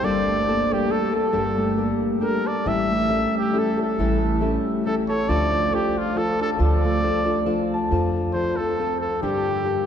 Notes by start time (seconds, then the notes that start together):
Already playing: C4 E5 G5
0.03 G1 G2 D3 G3 A#3 D4 A4 D5
0.27 A3
0.47 G3 A#3 D4 A4
0.71 G3 A#3 D4 G4 A4
0.89 G3 A#3 D4 G4 A4
1.13 G3 A#3 D4 A4
1.32 G1 G2 D3 G3 A#3 D4 A4
1.57 A3
1.76 G3 A#3 D4 A4
2.21 G3 A#3 D4 G4 A4 A#4
2.44 A4 D5
2.65 A1 A2 E3 G3 C#4 E4 A4 E5
2.90 A3
3.09 G3 C#4 E4 A4
3.38 G4
3.53 G3 C#4 E4 G4 A4
3.59 A4
3.77 G3 C#4 E4 A4
3.82 A4
3.98 A1 A2 E3 G3 C#4 E4 A4
4.21 A3
4.41 G3 C#4 E4 A4
4.85 G3 C#4 E4 G4 A4
5.08 A4 C#5
5.29 D2 D3 F3 D4 F4 A4 D5
5.50 A3
5.72 F3 D4 F4 G4 A4
5.98 F4
6.14 F3 D4 F4 A4 F5
6.39 D4 F4 A4 A5
6.58 D2 D3 F3 D4 F4 A4 D5
6.84 A3
7.02 F3 D4 F4 A4
7.25 D4 F4 A4
7.46 F3 D4 F4 A4 F5
7.74 A5
7.91 F2 F3 C4 F4 A4
8.33 F3 C4 F4 A4 C5
8.56 F4 A4
8.61 C4
8.79 F3 C4 F4 A4
9.00 A4
9.22 G2 D3 G3 A#3 D4 G4
9.65 G3 A#3 D4 G4